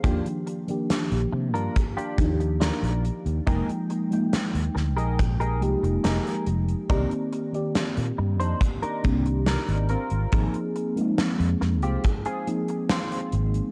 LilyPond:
<<
  \new Staff \with { instrumentName = "Clean electric guitar" } { \time 4/4 \key f \dorian \tempo 4 = 70 <d' f' g'>16 r4. <d' f' bes'>16 r16 <d' f' g'>16 r8 <d' f' bes'>8 r8 | <ees' g' aes' bes'>16 r4. <ees' g' aes' bes'>16 r16 <ees' g' aes' bes'>16 r8 <ees' g' aes' bes'>8 r8 | <d' ees' bes'>16 r4. <d' ees' c''>16 r16 <d' ees' bes'>16 r8 <d' ees' bes'>8 <c' f' bes'>8~ | <c' f' bes'>16 r4. <c' f' g'>16 r16 <c' f' aes'>16 r8 <c' f' c''>8 r8 | }
  \new Staff \with { instrumentName = "FM electric piano" } { \time 4/4 \key f \dorian <ees f bes d' g'>8. <ees f bes d' g'>4.~ <ees f bes d' g'>16 <f bes d' ees' g'>16 r4 r16 | <f aes bes ees' g''>8. <f aes bes ees' g''>4.~ <f aes bes ees' g''>16 <f aes bes ees' g'>16 r4 r16 | <ees bes c' g' d''>8. <ees bes c' g' d''>4.~ <ees bes c' g' d''>16 <ees bes c' d' g'>16 r4 r16 | <f bes c' ees' aes'>8. <f aes bes c' ees'>4.~ <f aes bes c' ees'>16 <f bes c' ees' aes'>16 r4 r16 | }
  \new Staff \with { instrumentName = "Fretless electric bass" } { \clef bass \time 4/4 \key f \dorian ees,16 r4 bes,,16 c16 g,16 r8 ees,8 r16 bes,,16 r16 ees,16 | f,,16 r4 ees,16 d,16 bes,,8. c,16 f,,16 f,,16 r16 f,,16 r16 | c,16 r4 bes,16 g,16 f,16 r8 c,8 r16 aes,,16 r16 aes,,16 | aes,,16 r4 f,16 f,16 c,16 r4. aes,,16 r16 | }
  \new DrumStaff \with { instrumentName = "Drums" } \drummode { \time 4/4 <hh bd>16 hh16 hh16 hh16 <hh sn>16 hh8 hh16 <hh bd>16 hh16 <hh bd>16 hh16 <hh sn>16 hh16 hh16 hh16 | <hh bd>16 hh16 hh16 hh16 <hh sn>16 hh16 sn16 hh16 <hh bd>16 hh16 hh16 hh16 <hh sn>16 hh16 hh16 hh16 | <hh bd>16 hh16 hh16 hh16 <hh sn>16 hh8 hh16 <hh bd>16 hh16 <hh bd>16 hh16 <hh sn>16 hh16 hh16 hh16 | <hh bd>16 hh16 hh16 hh16 <hh sn>16 hh16 sn16 hh16 <hh bd>16 hh16 hh16 hh16 <hh sn>16 hh16 hh16 hh16 | }
>>